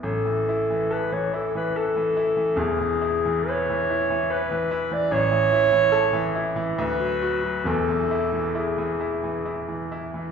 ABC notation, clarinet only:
X:1
M:3/4
L:1/16
Q:1/4=69
K:A
V:1 name="Clarinet"
A4 B c A B A4 | G4 c4 B3 d | c6- c z B4 | A4 G6 z2 |]